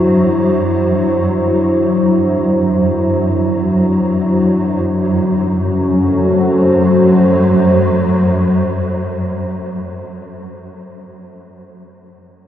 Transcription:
Already playing: F#2 F#3 D4 E4 F#4 C5
5.28 F#2 F#3 C#4
5.46 F#4
5.65 A4
5.82 C5

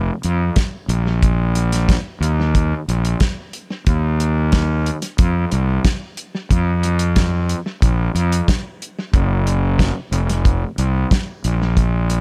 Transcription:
0.23 F2, closed hi-hat
0.56 kick, snare, closed hi-hat
0.88 A#1, closed hi-hat
1.23 kick, closed hi-hat
1.55 closed hi-hat
1.73 snare, closed hi-hat
1.89 kick, snare, closed hi-hat
2.20 D#2, closed hi-hat
2.55 kick, closed hi-hat
2.88 A#1, closed hi-hat
3.05 closed hi-hat
3.20 kick, snare, closed hi-hat
3.53 closed hi-hat
3.87 D#2, kick, closed hi-hat
4.20 closed hi-hat
4.52 kick, snare, closed hi-hat
4.86 closed hi-hat
5.02 closed hi-hat
5.18 F2, kick, closed hi-hat
5.52 C2, closed hi-hat
5.85 kick, snare, closed hi-hat
6.17 closed hi-hat
6.51 F2, kick, closed hi-hat
6.83 closed hi-hat
6.99 closed hi-hat
7.16 kick, snare, closed hi-hat
7.49 closed hi-hat
7.82 A#1, kick, closed hi-hat
8.15 F2, closed hi-hat
8.32 closed hi-hat
8.48 kick, snare, closed hi-hat
8.82 closed hi-hat
9.14 F#1, kick, closed hi-hat
9.47 closed hi-hat
9.79 kick, snare, closed hi-hat
10.12 F1, closed hi-hat
10.29 closed hi-hat
10.45 kick, closed hi-hat
10.78 C2, closed hi-hat
11.11 kick, snare, closed hi-hat
11.44 A#1, closed hi-hat
11.77 kick, closed hi-hat
12.10 closed hi-hat

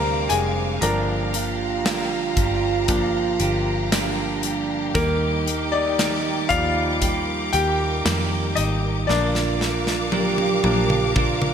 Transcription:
Already playing: D2 C3 G3 C4 D4 G4 A#4 C5 F5 G5 A#5 D6
0.29 F1 G#3 G#5, closed hi-hat
0.81 G1 G2 D3 F3 A#3 D4 F4 G4 A#4 A#5, closed hi-hat
1.33 F3 A#3 D4 G4, closed hi-hat
1.85 G2 D3 F3 A#3 D4 G4, snare, closed hi-hat
2.36 G1 F3 A#3 D4 G4, kick, closed hi-hat
2.88 F3 A#3 D4 G4, kick, closed hi-hat
3.40 G1 F3 A#3 D4 G4, closed hi-hat
3.92 G2 D3 F3 A#3 D4 G4, snare, closed hi-hat
4.43 closed hi-hat
4.94 D#2 D#3 G3 A#3 D#4 G4 A#4 D6, kick, closed hi-hat
5.46 A#3 G4, closed hi-hat
5.72 D#4 D5
5.99 D#3 G3 A#3 G4, snare, closed hi-hat
6.49 D#2 F3 G3 A#3 F4 G4 D5 F5, kick, closed hi-hat
7.01 G3 A#3 G4 A#4, kick, closed hi-hat
7.53 D#2 A#3 G4 G5, closed hi-hat
8.05 F2 D#3 G3 A#3 G4, snare, closed hi-hat
8.55 G#1 D#4 D#5, closed hi-hat
9.07 A#1 A#2 D3 F3 A#3 D4 F4 A#4 D5 F5 D6, snare
9.35 snare
9.60 F3 A#3 D4 A#4, snare
9.87 snare
10.12 A#2 D3 F3 A#3 D4 G4 A#4, high tom
10.38 high tom
10.63 A#1 F3 A#3 D4 A#4, high tom
10.90 mid tom
11.16 F3 A#3 D4 F4 A#4, kick, mid tom
11.42 mid tom

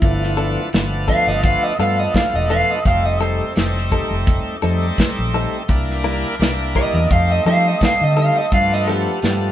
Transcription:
Already playing: E4
0.02 G1 F3 A3 B3 D4 A4, kick, closed hi-hat
0.23 snare
0.37 F3 B3 D4 A4
0.73 G1 F3 A3 B3 D4, snare, closed hi-hat
1.08 F3 B3 D4 A4 F5, kick
1.27 G1 D#5, snare
1.43 F5, kick, closed hi-hat
1.64 D#5
1.79 G2 F3 A3 B3 D4 A4 F5
1.99 D#5
2.14 F5, kick, snare, closed hi-hat
2.34 E1 D#5
2.50 F3 B3 D4 A4 F5
2.71 D#5
2.85 F1 G3 A3 C4 D#4 G4 F5, kick, closed hi-hat
3.06 D#5
3.21 G3 C4 D#4 A4 C5
3.56 F1 G3 A3 C4 D#4, snare, closed hi-hat
3.77 snare
3.92 G3 C4 D#4 A4, kick
4.11 F1
4.27 kick, closed hi-hat
4.62 F2 G3 A3 C4 D#4 A4
4.98 kick, snare, closed hi-hat
5.19 A#1
5.34 G3 C4 D#4 A4
5.68 C2 G3 A#3 D4 E4 A#4, kick, closed hi-hat
5.90 snare
6.04 G3 D4 E4 A#4
6.39 C2 G3 A#3 D4 E4, snare, closed hi-hat
6.75 G3 D4 E4 A#4 D#5, kick
6.93 E2 D#5
7.10 F2 G3 A3 C4 D#4 G4 A4 D#5 F5, kick, closed hi-hat
7.32 D#5
7.46 F3 G3 A3 C4 D#4 A4 D#5 F5
7.68 D#5
7.81 F5, kick, snare, closed hi-hat
8.01 D3 D#5
8.17 G3 C4 D#4 A4 F5
8.38 D#5
8.52 G2 F3 A3 B3 D4 F4 F5, kick, closed hi-hat
8.73 D#5, snare
8.88 F3 B3 D4 G4 A4
9.22 G2 F3 A3 B3 D4, snare, closed hi-hat

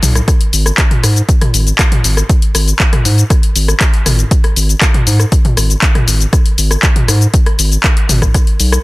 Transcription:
0.03 B1, open hi-hat, mid tom, shaker
0.15 cross-stick, closed hi-hat, shaker
0.28 kick, cross-stick, closed hi-hat, shaker
0.41 closed hi-hat
0.53 G#1, open hi-hat, shaker
0.66 cross-stick, closed hi-hat, shaker
0.78 kick, clap, closed hi-hat, shaker
0.91 closed hi-hat, mid tom
1.03 G#2, cross-stick, open hi-hat, shaker
1.16 closed hi-hat, shaker
1.29 kick, closed hi-hat, shaker
1.41 cross-stick, closed hi-hat, mid tom
1.54 G#1, open hi-hat, shaker
1.67 closed hi-hat, shaker
1.79 kick, cross-stick, clap, closed hi-hat, shaker
1.92 closed hi-hat, mid tom
2.04 G#1, open hi-hat, shaker
2.17 cross-stick, closed hi-hat, shaker
2.29 kick, closed hi-hat, shaker
2.42 closed hi-hat
2.55 G#1, cross-stick, open hi-hat, shaker
2.68 closed hi-hat, shaker
2.80 kick, clap, closed hi-hat, shaker
2.93 cross-stick, closed hi-hat, mid tom
3.05 G#2, open hi-hat, shaker
3.18 closed hi-hat, shaker
3.30 kick, cross-stick, closed hi-hat, shaker
3.43 closed hi-hat
3.56 G#1, open hi-hat, shaker
3.68 cross-stick, closed hi-hat, shaker
3.80 kick, clap, closed hi-hat, shaker
3.94 closed hi-hat
4.06 G#1, cross-stick, open hi-hat, mid tom, shaker
4.19 closed hi-hat, shaker
4.31 kick, closed hi-hat, shaker
4.44 cross-stick, closed hi-hat
4.56 G#1, open hi-hat, shaker
4.69 closed hi-hat, shaker
4.81 kick, cross-stick, clap, closed hi-hat, shaker
4.94 closed hi-hat, mid tom
5.07 G#2, open hi-hat, shaker
5.20 cross-stick, closed hi-hat, shaker
5.32 kick, closed hi-hat, shaker
5.45 closed hi-hat, mid tom
5.57 G#1, cross-stick, open hi-hat, shaker
5.70 closed hi-hat, shaker
5.82 kick, clap, closed hi-hat, shaker
5.95 cross-stick, closed hi-hat, mid tom
6.08 G#1, open hi-hat, shaker
6.20 closed hi-hat, shaker
6.33 kick, cross-stick, closed hi-hat, shaker
6.46 closed hi-hat
6.58 G#1, open hi-hat, shaker
6.71 cross-stick, closed hi-hat, shaker
6.83 kick, clap, closed hi-hat, shaker
6.96 closed hi-hat, mid tom
7.08 G#2, cross-stick, open hi-hat, shaker
7.21 closed hi-hat, shaker
7.34 kick, closed hi-hat, shaker
7.46 cross-stick, closed hi-hat
7.59 G#1, open hi-hat, shaker
7.72 closed hi-hat, shaker
7.84 kick, cross-stick, clap, closed hi-hat, shaker
7.97 closed hi-hat
8.09 G#1, open hi-hat, mid tom, shaker
8.22 kick, cross-stick, closed hi-hat, shaker
8.34 kick, cross-stick, closed hi-hat, shaker
8.47 closed hi-hat
8.60 B1, open hi-hat, shaker
8.72 cross-stick, closed hi-hat, shaker

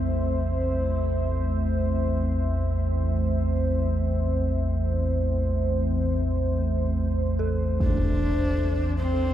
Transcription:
Already playing: A1 E2 A3 C4 E4 C5 E5
7.39 A4
7.80 D4, impact
8.55 D5
8.99 C4

